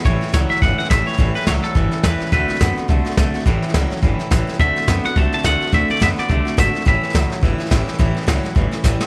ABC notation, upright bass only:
X:1
M:4/4
L:1/8
Q:"Swing" 1/4=211
K:Amix
V:1 name="Upright bass" clef=bass
A,,, z C,, z G,,, z A,,, z | A,,, z C,, z G,,, z E,, z | D,, z F,, z =C,, z B,,, z | A,,, z C,, z G,,, z A,,, z |
D,, z F,, z =C,, z D,, z | D,, z F,, z =C,, z ^G,,, z | A,,, z C,, z G,,, z A,,, z | A,,, z C,, z G,,, z A,,, z |]